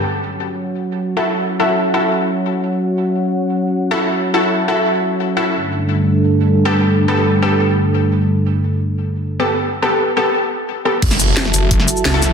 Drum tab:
CC |----------------|----------------|----------------|----------------|
HH |----------------|----------------|----------------|----------------|
SH |----------------|----------------|----------------|----------------|
SD |----------------|----------------|----------------|----------------|
BD |----------------|----------------|----------------|----------------|

CC |----------------|----------------|----------------|----------------|
HH |----------------|----------------|----------------|----------------|
SH |----------------|----------------|----------------|----------------|
SD |----------------|----------------|----------------|----------------|
BD |----------------|----------------|----------------|----------------|

CC |x---------------|
HH |x-x-x-o-x-x-x-o-|
SH |-xx---x---xx--x-|
SD |-o--oo---o--o-o-|
BD |o-------o-------|